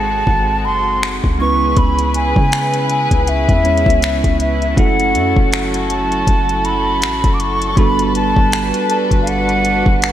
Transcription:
0.00 0.23 G#1 medium
0.00 1.34 G#3 medium
0.00 1.37 G#3 medium
0.00 1.35 C4 medium
0.00 1.37 C4 medium
0.00 1.35 D#4 medium
0.00 1.36 F#4 medium
0.00 1.37 F#4 medium
0.00 1.36 A4 medium
0.00 0.67 A5 loud
0.27 0.66 G#1 loud
0.27 kick medium
0.65 1.21 F#1 loud
0.65 1.14 C6 loud
1.03 finger snap loud
1.24 1.75 C#2 loud
1.24 kick medium
1.38 4.74 C#3 medium
1.38 3.60 G#3 medium
1.38 3.60 B3 medium
1.38 7.73 C#4 medium
1.38 3.61 C#4 medium
1.38 7.73 E4 medium
1.38 3.61 E4 medium
1.38 4.74 G#4 medium
1.38 4.74 B4 medium
1.38 3.62 B4 medium
1.38 1.79 C#6 loud
1.77 2.34 C#2 loud
1.77 2.15 B5 loud
1.77 kick loud
1.77 closed hi-hat medium
1.99 closed hi-hat medium
2.14 2.86 G#5 loud
2.14 closed hi-hat medium
2.36 3.08 C#3 loud
2.36 kick medium
2.52 finger snap loud
2.52 closed hi-hat soft
2.74 closed hi-hat medium
2.90 3.30 G#5 medium
2.90 closed hi-hat medium
3.11 3.47 C#2 loud
3.11 kick medium
3.11 closed hi-hat medium
3.27 4.40 E5 loud
3.27 closed hi-hat medium
3.49 3.85 E2 loud
3.49 kick medium
3.49 closed hi-hat soft
3.63 4.76 G#3 soft
3.63 4.77 B3 soft
3.63 4.75 C#4 soft
3.63 4.76 E4 soft
3.63 4.77 C#5 medium
3.63 closed hi-hat medium
3.77 closed hi-hat soft
3.86 4.22 C#2 medium
3.86 kick loud
3.86 closed hi-hat medium
4.02 finger snap loud
4.02 closed hi-hat medium
4.24 4.75 C#2 medium
4.24 kick medium
4.24 closed hi-hat soft
4.40 4.79 E5 medium
4.40 closed hi-hat medium
4.62 closed hi-hat soft
4.75 5.16 F#1 loud
4.75 7.74 F#3 medium
4.75 7.72 A3 medium
4.75 7.73 C#4 medium
4.75 7.73 E4 medium
4.75 7.74 F#4 medium
4.75 7.73 F#4 medium
4.75 10.12 A4 medium
4.75 7.74 A4 medium
4.75 5.65 F#5 loud
4.75 kick loud
4.75 closed hi-hat medium
5.00 closed hi-hat soft
5.14 5.35 F#2 loud
5.14 closed hi-hat medium
5.36 6.24 F#1 loud
5.36 kick medium
5.52 finger snap loud
5.52 closed hi-hat soft
5.74 closed hi-hat medium
5.90 6.67 A5 loud
5.90 closed hi-hat medium
6.12 closed hi-hat medium
6.27 7.03 F#1 loud
6.27 kick medium
6.27 closed hi-hat medium
6.49 closed hi-hat soft
6.65 7.36 B5 loud
6.65 closed hi-hat medium
7.02 7.23 A1 loud
7.02 finger snap loud
7.02 closed hi-hat medium
7.24 7.75 F#1 medium
7.24 kick medium
7.24 closed hi-hat soft
7.34 7.42 D6 medium
7.40 7.80 C#6 medium
7.40 closed hi-hat medium
7.62 closed hi-hat medium
7.75 8.34 G1 loud
7.75 10.12 G3 medium
7.75 10.12 B3 medium
7.75 10.12 D4 medium
7.75 10.12 F#4 medium
7.75 10.12 A4 medium
7.75 10.12 B4 medium
7.75 8.15 B5 loud
7.75 kick loud
7.75 closed hi-hat medium
7.99 closed hi-hat soft
8.15 8.86 A5 loud
8.15 closed hi-hat medium
8.36 8.72 G1 loud
8.36 kick medium
8.52 finger snap loud
8.52 closed hi-hat soft
8.74 closed hi-hat medium
8.90 8.98 A5 medium
8.90 closed hi-hat medium
9.11 9.83 G1 loud
9.11 kick medium
9.11 closed hi-hat medium
9.22 9.29 F5 medium
9.27 10.12 F#5 loud
9.27 closed hi-hat medium
9.49 closed hi-hat soft
9.65 closed hi-hat medium
9.86 10.12 G1 medium
9.86 kick loud
10.02 finger snap loud
10.02 closed hi-hat medium

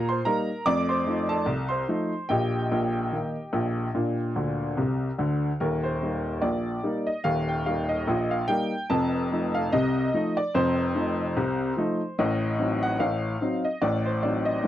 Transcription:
0.00 0.19 A#2 medium
0.09 0.25 C5 medium
0.09 0.25 C6 medium
0.25 0.48 G3 medium
0.25 0.48 A#3 medium
0.25 0.48 D#4 medium
0.25 0.64 A#4 medium
0.25 0.66 A#5 medium
0.66 1.01 F2 medium
0.66 0.90 A3 soft
0.66 0.88 D5 medium
0.66 0.89 D6 loud
0.89 1.28 C5 medium
0.89 1.30 C6 medium
1.06 1.29 F3 soft
1.06 1.29 A3 soft
1.06 1.29 D#4 medium
1.29 1.69 A4 medium
1.29 1.71 A5 medium
1.46 1.82 C2 medium
1.69 2.26 C5 medium
1.69 2.29 C6 medium
1.88 2.11 F3 soft
1.88 2.12 A3 soft
1.88 2.12 D#4 medium
2.29 2.63 A#1 medium
2.29 2.63 A#2 medium
2.29 5.16 G4 medium
2.29 5.16 D#5 medium
2.29 5.19 G5 medium
2.72 3.05 A#1 medium
2.72 3.05 A#2 medium
3.12 3.35 D#3 soft
3.12 3.35 A#3 soft
3.12 3.35 D#4 soft
3.53 3.87 A#1 medium
3.53 3.87 A#2 medium
3.95 4.30 A#2 medium
3.95 4.19 D4 soft
4.36 4.67 D2 medium
4.36 4.67 D3 medium
4.77 5.09 C2 medium
4.77 5.09 C3 medium
5.18 5.50 D2 medium
5.18 5.50 D3 medium
5.60 5.96 D#1 medium
5.60 5.96 D#2 medium
5.60 5.84 A#4 medium
5.83 6.42 C5 medium
6.02 6.25 G3 soft
6.02 6.25 A#3 soft
6.02 6.25 D#4 soft
6.42 6.77 A#1 medium
6.42 6.77 A#2 medium
6.42 7.07 D5 medium
6.83 7.06 G3 soft
6.83 7.07 A#3 soft
6.83 7.07 D#4 soft
7.07 7.25 D#5 medium
7.24 7.60 D#1 medium
7.24 7.60 D#2 medium
7.24 7.48 F5 medium
7.48 7.66 G5 medium
7.66 7.89 G3 soft
7.66 7.89 A#3 soft
7.66 7.89 D#4 medium
7.66 7.90 F5 medium
7.89 8.31 D#5 medium
8.07 8.42 A#1 medium
8.07 8.42 A#2 medium
8.31 8.48 F5 medium
8.48 8.71 G3 medium
8.48 8.72 A#3 medium
8.48 8.72 D#4 medium
8.48 8.89 G5 medium
8.90 9.25 F1 medium
8.90 9.25 F2 medium
8.90 9.54 A5 medium
9.32 9.54 F3 soft
9.32 9.54 A3 soft
9.32 9.55 D#4 soft
9.55 9.72 F5 medium
9.72 10.07 C2 medium
9.72 10.07 C3 medium
9.72 10.37 D#5 medium
10.14 10.36 F3 medium
10.14 10.36 A3 medium
10.14 10.37 D#4 medium
10.37 10.54 D5 medium
10.55 10.89 F1 medium
10.55 10.89 F2 medium
10.55 12.18 C5 medium
10.95 11.18 F3 soft
10.95 11.18 A3 soft
10.95 11.18 D#4 medium
11.37 11.71 C2 medium
11.37 11.71 C3 medium
11.77 11.99 F3 soft
11.77 12.00 A3 medium
11.77 12.00 D#4 medium
12.19 12.53 A1 medium
12.19 12.53 A2 medium
12.19 12.83 D#5 medium
12.59 12.82 F#3 soft
12.59 12.82 C4 soft
12.59 12.82 D#4 soft
12.83 13.00 F#5 medium
13.00 13.34 A1 medium
13.00 13.35 A2 medium
13.00 13.64 F5 medium
13.41 13.63 F#3 soft
13.41 13.64 C4 medium
13.41 13.64 D#4 medium
13.65 13.82 D#5 medium
13.82 14.17 A1 medium
13.82 14.17 A2 medium
13.82 14.05 D5 medium
14.06 14.23 C5 medium
14.23 14.46 F#3 soft
14.23 14.46 C4 soft
14.23 14.46 D#4 soft
14.23 14.46 D5 medium
14.45 14.67 D#5 medium
14.64 14.67 A1 medium
14.64 14.67 A2 medium

